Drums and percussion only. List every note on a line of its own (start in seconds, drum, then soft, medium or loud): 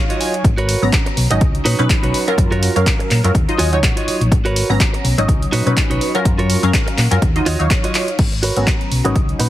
0.10 closed hi-hat medium
0.21 open hi-hat loud
0.34 closed hi-hat soft
0.44 kick loud
0.44 closed hi-hat medium
0.58 closed hi-hat soft
0.69 open hi-hat loud
0.93 kick loud
0.93 clap loud
0.93 closed hi-hat medium
1.06 closed hi-hat soft
1.17 open hi-hat loud
1.31 closed hi-hat medium
1.41 kick loud
1.41 closed hi-hat medium
1.55 closed hi-hat soft
1.66 open hi-hat loud
1.79 closed hi-hat soft
1.90 kick loud
1.90 clap loud
1.90 closed hi-hat medium
2.04 closed hi-hat medium
2.14 open hi-hat loud
2.28 closed hi-hat soft
2.38 kick loud
2.38 closed hi-hat medium
2.52 closed hi-hat soft
2.63 open hi-hat loud
2.76 closed hi-hat soft
2.86 kick loud
2.86 clap loud
2.86 closed hi-hat medium
3.00 closed hi-hat soft
3.11 clap medium
3.11 open hi-hat medium
3.24 closed hi-hat medium
3.35 kick loud
3.35 closed hi-hat medium
3.49 closed hi-hat soft
3.59 open hi-hat loud
3.73 closed hi-hat soft
3.83 kick loud
3.83 clap loud
3.83 closed hi-hat medium
3.97 closed hi-hat medium
4.08 open hi-hat loud
4.21 closed hi-hat soft
4.32 kick loud
4.32 closed hi-hat medium
4.46 closed hi-hat soft
4.56 open hi-hat loud
4.80 kick loud
4.80 clap loud
4.80 closed hi-hat medium
4.94 closed hi-hat soft
5.05 open hi-hat medium
5.18 closed hi-hat medium
5.28 kick loud
5.28 closed hi-hat medium
5.42 closed hi-hat soft
5.53 open hi-hat loud
5.67 closed hi-hat soft
5.77 kick loud
5.77 clap loud
5.77 closed hi-hat medium
5.91 closed hi-hat medium
6.01 open hi-hat medium
6.15 closed hi-hat soft
6.25 kick loud
6.25 closed hi-hat medium
6.39 closed hi-hat soft
6.50 open hi-hat loud
6.63 closed hi-hat soft
6.74 kick loud
6.74 clap loud
6.74 closed hi-hat medium
6.88 closed hi-hat soft
6.98 clap medium
6.98 open hi-hat medium
7.11 closed hi-hat medium
7.22 kick loud
7.22 closed hi-hat medium
7.36 closed hi-hat soft
7.46 open hi-hat loud
7.60 closed hi-hat soft
7.70 kick loud
7.70 clap loud
7.70 closed hi-hat medium
7.84 closed hi-hat medium
7.95 clap loud
7.95 open hi-hat medium
8.08 closed hi-hat soft
8.19 kick loud
8.19 closed hi-hat medium
8.19 crash medium
8.32 closed hi-hat soft
8.43 open hi-hat loud
8.57 closed hi-hat medium
8.67 kick loud
8.67 clap loud
8.67 closed hi-hat medium
8.81 closed hi-hat soft
8.92 open hi-hat medium
9.05 closed hi-hat medium
9.16 kick loud
9.16 closed hi-hat medium
9.29 closed hi-hat soft
9.40 open hi-hat loud